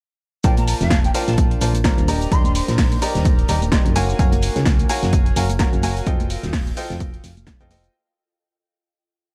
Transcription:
0.44 A#1 D4 F4 A#4 C5 D5 G5 A5, kick, closed hi-hat, tambourine, shaker
0.57 A#5, closed hi-hat, tambourine, high conga, shaker
0.67 A#5, open hi-hat, tambourine, shaker
0.77 A#4 F5
0.81 F1, snare, closed hi-hat, tambourine, shaker
0.90 kick, snare, closed hi-hat, tambourine, shaker
1.04 G5, closed hi-hat, tambourine, high conga, shaker
1.14 F4 A#4 C5 D5 G5 A5, open hi-hat, tambourine, shaker
1.28 A#1, snare, closed hi-hat, tambourine, shaker
1.37 kick, closed hi-hat, tambourine, high conga, shaker
1.51 closed hi-hat, tambourine
1.61 A#1 F4 A#4 C5 D5 A5, snare, open hi-hat, tambourine, shaker
1.74 closed hi-hat, tambourine, high conga, shaker
1.84 F4 A#4 C5 D5 A#5, kick, snare, closed hi-hat, tambourine, shaker
1.98 D#1, closed hi-hat, tambourine, shaker
2.08 D#4 G4 A#4 D5 D#5 A#5, open hi-hat, tambourine, high conga, shaker
2.21 closed hi-hat, tambourine, shaker
2.31 D#1 G4 A#4 D5 D#5 A#5 C6, kick, closed hi-hat, tambourine, shaker
2.44 C6, closed hi-hat, tambourine, high conga, shaker
2.55 C6, open hi-hat, tambourine, shaker
2.68 A#1, snare, closed hi-hat, tambourine, shaker
2.78 kick, snare, closed hi-hat, open hi-hat, tambourine, shaker
2.92 closed hi-hat, tambourine, high conga, shaker
3.02 G4 A#4 D5 D#5 A#5, open hi-hat, tambourine, shaker
3.15 D#1, snare, closed hi-hat, tambourine, shaker
3.25 kick, closed hi-hat, tambourine, high conga, shaker
3.39 closed hi-hat, tambourine
3.48 D#1 G4 A#4 D5 D#5 A#5, snare, open hi-hat, tambourine, shaker
3.62 closed hi-hat, tambourine, high conga, shaker
3.72 G4 A#4 D5 D#5 C6, kick, snare, closed hi-hat, tambourine, shaker
3.85 F#1, closed hi-hat, tambourine, shaker
3.96 F#4 A#4 C#5 F5 G#5, open hi-hat, tambourine, high conga, shaker
4.09 shaker
4.19 F#1 F#4 A#4 C#5 F5 G#5, kick, closed hi-hat, tambourine, shaker
4.32 closed hi-hat, tambourine, high conga, shaker
4.42 open hi-hat, tambourine, shaker
4.56 C#2, snare, closed hi-hat, tambourine, shaker
4.66 kick, snare, closed hi-hat, tambourine, shaker
4.71 F5
4.79 closed hi-hat, tambourine, high conga, shaker
4.89 F#4 A#4 C#5 F5 G#5, open hi-hat, tambourine, shaker
5.03 F#1, snare, closed hi-hat, tambourine, shaker
5.13 kick, closed hi-hat, tambourine, high conga, shaker
5.26 closed hi-hat, tambourine
5.36 F#1 F#4 A#4 C#5 F5 G#5, snare, open hi-hat, tambourine, shaker
5.50 closed hi-hat, tambourine, high conga, shaker
5.59 F#4 A#4 C#5 F5 A#5, kick, snare, closed hi-hat, tambourine, shaker
5.73 F#1, closed hi-hat, tambourine, shaker
5.83 F#4 A#4 C#5 F5 G#5, open hi-hat, tambourine, high conga, shaker
5.97 closed hi-hat, tambourine, shaker
6.06 F1 F4 A4 C5 D#5 G5, kick, closed hi-hat, tambourine, shaker
6.20 closed hi-hat, tambourine, high conga, shaker
6.30 open hi-hat, tambourine, shaker
6.43 D#1, snare, closed hi-hat, tambourine, shaker
6.53 kick, snare, closed hi-hat, open hi-hat, tambourine, shaker
6.67 closed hi-hat, tambourine, high conga, shaker
6.77 F4 A4 C5 D#5 G5, open hi-hat, tambourine, shaker
6.90 F1, snare, closed hi-hat, shaker
7.00 kick, closed hi-hat, tambourine, high conga, shaker
7.14 closed hi-hat, tambourine
7.24 F1, snare, open hi-hat, tambourine, shaker
7.37 closed hi-hat, tambourine, high conga, shaker
7.47 kick, snare, closed hi-hat, tambourine, shaker
7.60 F1 F4 A4 C5 D#5 G5, closed hi-hat, tambourine, shaker
7.71 F4 A4 C5 D#5 G5, open hi-hat, tambourine, high conga, shaker
7.84 closed hi-hat, tambourine, shaker

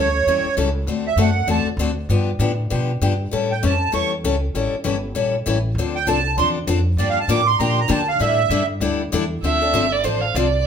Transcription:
Already playing: D2 C#5
0.26 E2 E3 G3 C#4 E4 A4
0.45 muted upright bass stroke
0.57 C#2 E3 G3 C#4 E4 A4
0.87 D2 D3 A3 C4 F#4 A4
1.07 E5
1.16 F#2 D3 A3 C4 F#4 A4
1.21 F#5
1.47 E2 D3 A3 C4 F#4 A4 A5
1.66 muted upright bass stroke
1.77 D2 D3 A3 C4 F#4 A4
2.09 G2 D3 F3 B3 D4 G4
2.39 A2 D3 F3 B3 D4 G4
2.70 B2 D3 F3 B3 D4 G4
3.02 G2 D3 F3 B3 D4 G4
3.31 A2 E3 G3 C#4 E4 A4
3.52 G5
3.63 F2 E3 G3 C#4 E4 A4 A5
3.92 E2 E3 G3 C#4 E4 A4 C#6
4.24 C#2 E3 G3 C#4 E4 A4
4.55 A1 E3 G3 C#4 E4 A4
4.73 muted upright bass stroke
4.84 G1 E3 G3 C#4 E4 A4
5.15 A#1 E3 G3 C#4 E4 A4
5.46 A1 E3 G3 C#4 E4 A4
5.75 D2 D3 F3
5.79 C4 D4 A4
5.95 G5
6.07 C2 D3 F3 C4 D4 A4 A5
6.37 E2 D3 F3 C4 D4 A4 C6
6.67 F2 D3 F3 C4 D4 A4
6.97 G2 D3 F3 A#3 D4 G4 D5
7.10 F5
7.20 A5
7.28 A2 D3 F3 A#3 D4 G4 D6
7.47 C6
7.59 A#2 D3 F3 A#3 D4 G4 A#5
7.69 C6
7.80 A#5
7.88 D3 F3 A#3 D4 G4 A5
8.08 F5
8.20 A2 D3 G3 D4 E4 A4 E5
8.49 G2 D3 G3 D4 E4 A4
8.80 D2 D3 G3 D4 E4 A4
9.12 E2 D3 G3 D4 E4 A4
9.43 D2 D3 F3 C4 D4 A4 E5
9.62 C4 D4 A4
9.73 G1 D3 F3 C4 D4 A4
9.92 D5
10.04 A1 D3 F3 C4 D4 A4 C5
10.21 F5
10.35 C2 D3 F3 C4 D4 A4 D5

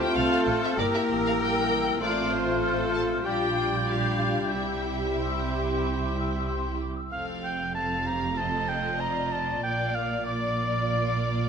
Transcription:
Already playing: A3 C4 E4 F4 G4 C5 F6
0.02 G5
0.16 C2 A3 C4 F4 A4 F5
0.32 F5
0.47 A1
0.64 E5
0.78 G1 A#3 E4 G4 A#4 D5 E6
0.94 E5
1.09 A1
1.26 F5
1.40 A#1 G3 A#3 G4 G5
1.71 A1
2.01 A1 A3 C4 F4 C5 D5 F6
2.32 C5
2.63 A4
2.94 A5
3.25 A#1 G3 D4 F4 G4 D5 G5 G6
3.57 F4
3.88 G3 D4 F4 G4 F5
4.21 D4
4.52 C2 G3 C4 E4 G4 E5
5.19 C5 E6
5.52 D6
6.16 E6
6.48 C6
6.80 D6
6.96 E6
7.11 F1 F2 C4 A4 F5
7.44 G5
7.75 C4 A4 F5 A5
8.06 G4 A#5
8.37 C4 F4 A4 D#5 A5
8.69 G5
9.00 D5 A#5
9.32 A5
9.63 A#1 A#2 A#3 F4 D5 G5
9.94 F5
10.26 A#3 F4 D5

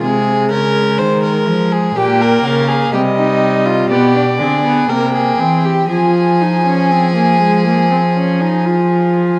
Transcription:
0.02 C3 G#3 G#4
0.50 C#3 A#4
0.98 D#3 C5
1.23 A#4
1.48 F3
1.72 G#4
1.95 A#2 A#3 G4 G5
2.21 A#4
2.44 C#3 F5
2.69 G#4
2.93 C3 G3 G4 D#5
3.17 D#4
3.66 F4
3.90 B2 B3 G4 D5
4.15 D4
4.39 D3 C4 G#4
4.64 B3
4.89 C3 A#3 A#4 G5
5.14 G#4
5.38 E3 C4
5.65 G4
5.89 F3 F4 G#4 G#5
6.41 D#4
6.66 C#4
6.91 C4
7.16 A#3
7.41 G#3
7.66 A#3
7.91 C4
8.15 C#4
8.40 D#4
8.66 F4

